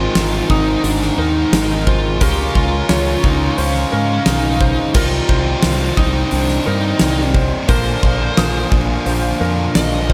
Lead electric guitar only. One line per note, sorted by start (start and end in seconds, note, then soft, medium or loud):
0.00 0.50 F4 loud
0.50 0.83 D#4 loud
0.84 1.17 D4 medium
1.18 1.83 D#4 loud
1.87 2.22 F4 medium
2.21 2.53 G4 loud
2.56 3.24 F4 loud
3.24 3.58 D#4 medium
3.58 4.23 C#4 medium
4.27 4.95 D#4 medium
4.95 5.98 F4 medium
5.98 6.32 D#4 medium
6.32 6.66 D4 medium
6.66 7.31 D#4 medium
7.68 9.71 C5 loud
9.75 10.13 D#5 medium